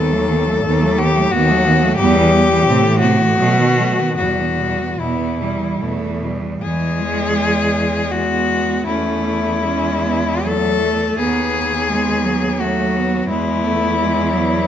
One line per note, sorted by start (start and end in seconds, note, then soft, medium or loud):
0.00 0.56 D#2 medium
0.00 0.13 D#3 medium
0.00 0.14 B3 medium
0.00 1.00 A4 loud
0.11 0.29 F#3 medium
0.11 0.31 A3 medium
0.28 0.48 D#3 medium
0.28 0.48 B3 medium
0.46 0.63 F#3 medium
0.46 0.64 A3 medium
0.64 1.25 D#2 loud
0.64 0.83 D#3 medium
0.64 0.84 B3 medium
0.82 1.00 F#3 medium
0.82 1.00 A3 medium
0.98 1.17 D#3 medium
0.98 1.17 B3 medium
0.98 1.33 G4 loud
1.15 1.32 F#3 medium
1.15 1.32 A3 medium
1.32 1.91 D#2 loud
1.32 1.50 D#3 medium
1.32 1.52 B3 medium
1.32 1.97 F#4 loud
1.49 1.67 F#3 medium
1.49 1.68 A3 medium
1.65 1.83 D#3 medium
1.65 1.85 B3 medium
1.82 1.98 F#3 medium
1.82 1.99 A3 medium
1.98 2.58 E2 loud
1.98 2.17 G3 loud
1.98 2.18 B3 loud
1.98 2.99 G4 loud
2.16 2.33 E3 medium
2.16 2.35 G3 medium
2.32 2.51 G3 medium
2.32 2.52 B3 medium
2.49 2.66 E3 medium
2.49 2.67 G3 medium
2.66 3.30 A2 loud
2.66 2.84 C3 medium
2.66 2.85 C4 medium
2.83 3.02 E3 medium
2.83 3.05 A3 medium
3.00 3.20 C3 medium
3.00 3.22 C4 medium
3.00 4.15 F#4 loud
3.19 3.37 E3 medium
3.19 3.38 A3 medium
3.37 4.09 B2 loud
3.37 3.59 F#3 medium
3.37 3.60 A3 medium
3.58 3.80 D#3 medium
3.58 3.81 B3 medium
3.78 4.00 F#3 medium
3.78 4.02 A3 medium
3.98 4.18 D#3 medium
3.98 4.20 B3 medium
4.18 4.90 E2 medium
4.18 4.40 B2 medium
4.18 4.42 G3 medium
4.18 5.01 F#4 loud
4.39 4.60 E3 medium
4.39 4.62 B3 medium
4.59 4.80 B2 medium
4.59 4.82 G3 medium
4.78 4.98 E3 medium
4.78 5.00 B3 medium
4.98 5.71 E2 medium
4.98 5.20 B2 medium
4.98 5.43 B3 medium
4.98 6.22 E4 medium
5.19 5.40 E3 medium
5.39 5.61 B2 medium
5.39 5.83 G3 medium
5.59 5.79 E3 medium
5.79 6.53 E2 medium
5.79 6.02 B2 medium
5.79 6.26 A3 medium
6.01 6.23 E3 medium
6.21 6.44 B2 medium
6.21 6.63 G3 medium
6.43 6.62 E3 medium
6.62 8.83 E2 medium
6.62 7.02 E3 medium
6.62 8.14 G#3 medium
6.62 8.13 G#4 loud
7.00 8.11 G#3 medium
8.11 8.88 G#3 medium
8.11 8.87 B3 medium
8.11 8.86 F#4 loud
8.87 11.16 E2 medium
8.87 9.64 A3 medium
8.87 9.62 C#4 medium
8.87 10.47 E4 loud
9.63 10.46 G#3 medium
9.63 10.06 C#4 medium
10.05 10.46 B3 medium
10.44 10.82 F#3 medium
10.44 11.18 A3 medium
10.44 11.18 A4 loud
10.82 11.20 A3 medium
11.19 13.26 D#2 medium
11.19 11.89 B3 medium
11.19 12.62 G#4 loud
11.89 12.26 G#3 medium
11.89 12.62 B3 medium
12.24 12.60 F#3 medium
12.60 13.31 F#3 medium
12.60 12.98 A3 medium
12.60 13.28 F#4 loud
12.96 13.30 B3 medium
13.29 14.67 E2 medium
13.29 13.66 G#3 medium
13.29 14.67 B3 medium
13.29 14.67 E4 loud
13.64 13.98 A3 medium
13.99 14.34 G#3 medium
14.32 14.67 F#3 medium